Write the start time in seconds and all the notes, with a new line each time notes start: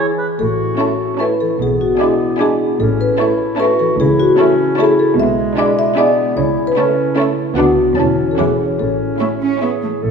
Already playing: E3 E4 G#4 B4 E5
0.00 B5
0.18 B4
0.39 A1 A2 F#4 A4
0.60 C#4
0.78 A3 C#4 E4 C#5 A5 C#6
1.01 A4
1.18 A3 C#4 E4 B4 A5 C#6
1.40 E3 A4
1.59 B1 B2 B3 G#4
1.81 D4 F#4
1.99 G#3 D4 E4 G#5 D6
2.21 G#4
2.39 G#3 D4 E4 G#4 G#5 D6
2.60 B3
2.79 A1 A2 C#4 A4
3.00 C#4 B4
3.19 A3 C#4 E4 C#5 A5 C#6
3.41 A4
3.57 A3 C#4 E4 F#4 B4 A5 C#6
3.79 E3 A4
3.98 C#2 C#3 E4 G#4
4.19 C#4 F#4
4.38 A3 C#4 E4 A5 C#6
4.59 A4
4.77 A3 C#4 E4 G#4 A5 C#6
4.99 A3 A4
5.16 B1 B2 G#3 E5
5.39 D4
5.58 G#3 D4 E4 D5 G#5 D6
5.79 G#4 E5
5.96 G#3 B3 D4 E4 D5 G#5 D6
6.19 B3
6.36 C#2 C#3 E4 C#5
6.58 C#4
6.67 B4
6.77 A3 C#4 E4 A4 A5 C#6
6.97 A4
7.16 A3 C#4 E4 A5 C#6
7.38 A3
7.56 D2 D3 B3 D4 F#4 F#5 D6
7.78 F#4 B4
7.96 E1 E2 E3 C#4 E4 A5
8.19 A4 C#5
8.31 A4
8.38 E1 E2 E3 C#4 E4 G#4 F#5 D6
8.59 F#4 C#5
8.79 A1 A2 C#4 A4
9.00 C#4
9.20 A3 C#4 E4 E5 C#6
9.41 C#4 C#5
9.61 B3 C#4 E4 G#4 E5 C#6
9.83 E3 A3
10.02 A1 A2 A4